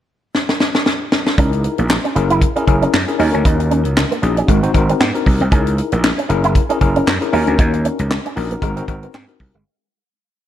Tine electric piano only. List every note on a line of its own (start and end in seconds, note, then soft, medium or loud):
1.38 1.93 D#4 medium
1.38 1.93 E4 medium
1.38 1.93 G#4 medium
1.38 1.93 A#4 medium
2.15 2.47 C#4 medium
2.15 2.47 E4 medium
2.15 2.47 G#4 medium
2.15 2.48 A#4 medium
2.56 2.64 C#4 medium
2.56 2.64 E4 medium
2.56 2.64 G#4 medium
2.56 2.64 A#4 medium
2.67 2.95 C#4 medium
2.67 2.95 E4 medium
2.67 2.95 G#4 medium
2.67 2.95 A#4 medium
3.07 3.18 C#4 medium
3.07 3.19 E4 medium
3.07 3.19 G#4 medium
3.07 3.18 A#4 medium
3.19 4.02 C#4 medium
3.19 4.02 D#4 medium
3.19 4.03 F#4 medium
3.19 4.03 A#4 medium
4.22 4.48 C#4 medium
4.22 4.47 D#4 medium
4.22 4.47 F#4 medium
4.22 4.49 G#4 medium
4.48 4.60 C4 medium
4.48 4.60 D#4 medium
4.48 4.60 F#4 medium
4.48 4.60 A#4 medium
4.63 4.71 C4 medium
4.63 4.71 D#4 medium
4.63 4.71 F#4 medium
4.63 4.71 C5 medium
4.74 5.01 C4 medium
4.74 5.02 D#4 medium
4.74 5.02 F#4 medium
4.74 5.02 A#4 medium
5.14 5.42 C4 medium
5.14 5.42 D#4 medium
5.14 5.42 F#4 medium
5.14 5.42 A#4 medium
5.52 6.07 D#4 medium
5.52 6.07 E4 medium
5.52 6.07 G#4 medium
5.52 6.07 A#4 medium
6.29 6.61 C#4 medium
6.29 6.61 E4 medium
6.29 6.61 G#4 medium
6.29 6.61 A#4 loud
6.69 6.78 C#4 medium
6.69 6.78 E4 medium
6.69 6.78 G#4 medium
6.69 6.78 A#4 medium
6.81 7.08 C#4 medium
6.81 7.09 E4 medium
6.81 7.09 G#4 medium
6.81 7.09 A#4 loud
7.21 7.31 C#4 medium
7.21 7.33 E4 medium
7.21 7.33 G#4 medium
7.21 7.32 A#4 medium
7.32 8.16 C#4 medium
7.32 8.16 D#4 medium
7.32 8.16 F#4 medium
7.32 8.16 A#4 medium
8.36 8.62 C#4 medium
8.36 8.61 D#4 medium
8.36 8.61 F#4 medium
8.36 8.61 A#4 loud
8.62 8.74 C4 medium
8.62 8.74 D#4 medium
8.62 8.74 F#4 medium
8.62 8.74 A#4 medium
8.76 8.84 C4 medium
8.76 8.85 D#4 medium
8.76 8.85 F#4 medium
8.76 8.85 A#4 medium
8.88 9.15 C4 medium
8.88 9.15 D#4 medium
8.88 9.16 F#4 medium
8.88 9.16 A#4 medium
9.28 9.55 C4 medium
9.28 9.55 D#4 medium
9.28 9.56 F#4 medium
9.28 9.56 A#4 medium